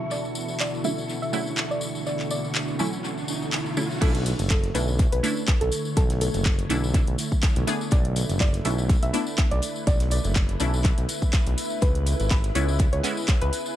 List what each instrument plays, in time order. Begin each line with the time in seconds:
Already playing: string machine B2 E3 E4 F#4 A4 C#6, synth stab C#3 D3 F#3 A3 E4, ambient pad D3 A4 B4 C#5 E5
0.11 synth pluck D5, tambourine, riser
0.25 tambourine
0.35 tambourine
0.48 tambourine
0.60 synth pluck D5, clap, tambourine
0.74 tambourine
0.84 synth stab D3 F#3 A3 C#4 E4, synth pluck E5, tambourine
0.98 tambourine
1.09 tambourine
1.22 synth pluck E5, tambourine
1.33 synth stab C#3 D3 F#3 A3 E4, tambourine
1.47 tambourine
1.57 clap, tambourine
1.71 synth pluck D5, tambourine
1.81 tambourine
1.95 tambourine
2.07 synth pluck D5, tambourine
2.19 clap, tambourine
2.31 synth pluck D5, tambourine
2.45 tambourine
2.55 clap, tambourine
2.68 tambourine
2.79 synth stab D3 F#3 A3 C#4 E4, tambourine
2.93 tambourine
3.04 tambourine
3.18 tambourine
3.28 tambourine
3.42 tambourine
3.53 clap, tambourine
3.66 tambourine
3.77 synth stab D3 F#3 A3 C#4 E4, tambourine
3.90 tambourine
4.01 analog synth bass B1, string machine D3 A3 E4 C#5, synth stab A3 C#4 D4 E4, synth pluck A4, kick, closed hi-hat, crash, tambourine
4.08 ambient pad C#6
4.15 closed hi-hat
4.26 closed hi-hat, open hi-hat, tambourine
4.39 analog synth bass F#1, snare, closed hi-hat, tambourine
4.50 synth pluck A4, kick, snare, clap, closed hi-hat
4.64 snare, closed hi-hat
4.71 analog synth bass B1, synth stab A3 C#4 D4 E4, synth pluck B4, ambient pad E5, closed hi-hat, open hi-hat, tambourine
4.88 tambourine
4.99 kick, closed hi-hat, tambourine
5.12 analog synth bass B1, synth pluck B4, closed hi-hat
5.23 synth stab A3 C#4 D4 E4, closed hi-hat, open hi-hat, tambourine
5.37 tambourine
5.47 kick, snare, clap, closed hi-hat, tambourine
5.61 analog synth bass B1, synth pluck A4, closed hi-hat
5.72 closed hi-hat, open hi-hat, tambourine
5.85 tambourine
5.97 analog synth bass B1, synth pluck A4, kick, closed hi-hat, tambourine
6.10 snare, closed hi-hat
6.21 synth pluck A4, closed hi-hat, open hi-hat, tambourine
6.34 analog synth bass F#1, snare, closed hi-hat, tambourine
6.46 kick, snare, clap, closed hi-hat
6.59 closed hi-hat
6.69 analog synth bass B1, synth stab A3 C#4 D4 E4, snare, closed hi-hat, open hi-hat, tambourine
6.84 tambourine
6.94 kick, closed hi-hat, tambourine
7.07 analog synth bass B1, closed hi-hat
7.18 closed hi-hat, open hi-hat, tambourine
7.32 kick, tambourine
7.43 kick, snare, clap, closed hi-hat, tambourine
7.56 analog synth bass B1, closed hi-hat
7.67 synth stab A3 B3 D4 G#4, snare, closed hi-hat, open hi-hat, tambourine
7.81 tambourine
7.91 analog synth bass B1, string machine B4, synth pluck D5, kick, closed hi-hat, tambourine
8.05 closed hi-hat
8.16 closed hi-hat, open hi-hat, tambourine
8.29 analog synth bass F#1, snare, closed hi-hat, tambourine
8.39 ambient pad B4, synth pluck D5, kick, snare, clap, closed hi-hat
8.54 snare, closed hi-hat
8.65 analog synth bass B1, synth stab A3 C#4 D4 E4, synth pluck E5, closed hi-hat, open hi-hat, tambourine
8.78 tambourine
8.89 kick, closed hi-hat, tambourine
9.02 analog synth bass B1, synth pluck E5, closed hi-hat
9.13 synth stab A3 B3 D4 E4, closed hi-hat, open hi-hat, tambourine
9.27 tambourine
9.38 kick, snare, clap, closed hi-hat
9.51 analog synth bass B1, synth pluck D5, closed hi-hat
9.62 closed hi-hat, open hi-hat, tambourine
9.76 tambourine
9.87 analog synth bass B1, synth pluck D5, kick, closed hi-hat, tambourine
10.00 snare, closed hi-hat
10.11 synth pluck D5, closed hi-hat, open hi-hat, tambourine
10.24 analog synth bass F#1, snare, closed hi-hat, tambourine
10.36 kick, snare, clap, closed hi-hat
10.49 closed hi-hat
10.60 analog synth bass B1, synth stab A3 C#4 D4 E4, snare, closed hi-hat, open hi-hat, tambourine
10.74 tambourine
10.84 kick, clap, closed hi-hat, tambourine
10.98 analog synth bass B1, closed hi-hat
11.09 closed hi-hat, open hi-hat, tambourine
11.22 kick, closed hi-hat, tambourine
11.33 kick, snare, clap, closed hi-hat, tambourine
11.46 analog synth bass B1, closed hi-hat
11.57 snare, closed hi-hat, open hi-hat, tambourine
11.70 tambourine
11.82 analog synth bass C#2, ambient pad C#4, string machine G#4, synth pluck B4, kick, closed hi-hat, tambourine
11.95 closed hi-hat
12.01 ambient pad G#4
12.06 closed hi-hat, open hi-hat, tambourine
12.19 analog synth bass G#1, snare, closed hi-hat, tambourine
12.30 synth pluck B4, kick, snare, clap, closed hi-hat, tambourine
12.44 snare, closed hi-hat
12.55 analog synth bass C#2, synth stab G#3 B3 C#4 E4, synth pluck C#5, closed hi-hat, open hi-hat, tambourine
12.68 tambourine
12.79 kick, closed hi-hat, tambourine
12.93 analog synth bass C#2, synth pluck C#5, closed hi-hat
13.03 synth stab G#3 B3 C#4 E4, closed hi-hat, open hi-hat, tambourine
13.17 tambourine
13.28 kick, snare, clap, closed hi-hat
13.41 analog synth bass C#2, synth pluck B4, closed hi-hat
13.53 closed hi-hat, open hi-hat, tambourine
13.66 tambourine